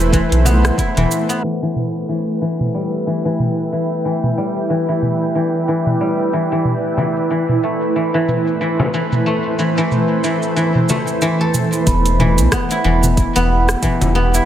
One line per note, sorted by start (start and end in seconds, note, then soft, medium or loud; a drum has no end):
0.00 0.22 E1 medium
0.00 0.12 E3 medium
0.00 1.40 A3 medium
0.00 1.43 A3 medium
0.00 2.15 A3 medium
0.00 1.39 E4 medium
0.00 1.42 A4 medium
0.00 1.40 B4 medium
0.00 1.40 C5 medium
0.00 shaker soft
0.13 0.96 E3 medium
0.13 kick loud
0.13 closed hi-hat medium
0.13 shaker soft
0.32 0.71 B1 medium
0.32 closed hi-hat soft
0.45 1.29 B3 medium
0.45 frame drum medium
0.45 shaker medium
0.65 cross-stick medium
0.65 closed hi-hat soft
0.65 shaker soft
0.78 3.40 E4 medium
0.78 kick loud
0.78 closed hi-hat medium
0.78 shaker soft
0.97 1.06 E1 loud
0.97 1.42 E3 medium
0.97 closed hi-hat soft
0.97 mid tom medium
1.11 shaker medium
1.29 4.40 B3 medium
1.29 closed hi-hat soft
1.29 shaker soft
1.43 1.61 E3 medium
1.43 11.89 A3 medium
1.43 11.83 E4 medium
1.43 11.89 A4 medium
1.43 11.83 B4 medium
1.43 4.02 E5 medium
1.43 6.61 G5 medium
1.62 2.07 E3 medium
1.76 mid tom medium
1.76 shaker medium
1.95 shaker soft
2.09 2.40 E3 medium
2.41 3.05 E3 medium
2.41 shaker medium
2.60 mid tom medium
2.60 shaker soft
2.74 4.36 G3 medium
2.74 shaker soft
3.07 3.24 E3 medium
3.07 shaker medium
3.25 3.71 E3 medium
3.25 shaker soft
3.40 mid tom medium
3.40 shaker soft
3.72 4.04 E3 medium
3.72 shaker medium
3.91 shaker soft
4.04 4.69 E3 medium
4.04 6.63 D5 medium
4.04 shaker soft
4.23 mid tom medium
4.37 5.99 G3 medium
4.37 shaker medium
4.56 shaker soft
4.70 4.87 E3 medium
4.70 shaker soft
4.89 5.34 E3 medium
5.02 mid tom medium
5.02 shaker medium
5.21 shaker soft
5.35 5.67 E3 medium
5.35 shaker soft
5.67 6.32 E3 medium
5.67 shaker medium
5.86 mid tom medium
5.86 shaker soft
6.00 6.71 G3 medium
6.00 shaker soft
6.32 6.51 E3 medium
6.32 shaker medium
6.51 6.71 E3 medium
6.51 shaker soft
6.65 11.84 E3 medium
6.65 11.83 A3 medium
6.65 11.84 C5 medium
6.65 mid tom medium
6.65 shaker soft
6.97 7.29 E3 medium
6.97 frame drum medium
6.97 shaker medium
7.16 shaker soft
7.30 7.95 E3 medium
7.30 shaker soft
7.49 mid tom medium
7.63 9.26 A3 medium
7.63 shaker medium
7.82 shaker soft
7.96 8.13 E3 medium
7.96 shaker soft
8.14 8.60 E3 medium
8.28 mid tom medium
8.28 shaker medium
8.47 shaker soft
8.61 8.93 E3 medium
8.61 shaker soft
8.79 frame drum medium
8.94 9.58 E3 medium
8.94 shaker medium
9.12 mid tom medium
9.12 shaker soft
9.26 10.89 A3 medium
9.26 shaker soft
9.59 9.76 E3 medium
9.59 shaker medium
9.78 10.23 E3 medium
9.78 shaker soft
9.91 mid tom medium
9.91 shaker soft
10.24 10.55 E3 medium
10.24 shaker medium
10.42 shaker soft
10.56 11.21 E3 medium
10.56 shaker soft
10.75 mid tom medium
10.89 14.22 A3 medium
10.89 frame drum medium
10.89 shaker medium
11.08 shaker soft
11.22 11.92 E3 medium
11.22 shaker soft
11.41 13.60 A4 medium
11.54 mid tom medium
11.54 shaker medium
11.73 shaker soft
11.87 12.40 E1 loud
11.87 14.45 B3 medium
11.87 14.45 E4 medium
11.87 14.45 G4 medium
11.87 14.45 B4 medium
11.87 14.45 B5 medium
11.87 kick loud
11.87 closed hi-hat medium
11.87 shaker medium
12.06 closed hi-hat soft
12.06 shaker soft
12.19 12.83 E3 medium
12.19 mid tom medium
12.19 frame drum medium
12.38 12.48 B1 loud
12.38 closed hi-hat soft
12.38 shaker medium
12.52 13.35 B3 medium
12.52 kick loud
12.52 cross-stick medium
12.52 closed hi-hat medium
12.52 shaker medium
12.71 14.34 E4 medium
12.71 closed hi-hat soft
12.71 shaker soft
12.84 13.26 E1 medium
12.84 13.82 E3 medium
13.03 mid tom medium
13.03 shaker medium
13.17 kick loud
13.17 closed hi-hat medium
13.17 shaker medium
13.36 13.76 E1 medium
13.36 14.15 B3 loud
13.36 closed hi-hat soft
13.36 shaker soft
13.69 cross-stick medium
13.69 shaker medium
13.82 14.45 E3 medium
13.82 kick loud
13.82 closed hi-hat medium
13.82 mid tom medium
13.82 shaker medium
14.01 14.41 E1 loud
14.01 closed hi-hat soft
14.01 frame drum medium
14.01 shaker soft
14.15 14.45 B3 medium
14.34 14.45 E4 medium
14.34 shaker medium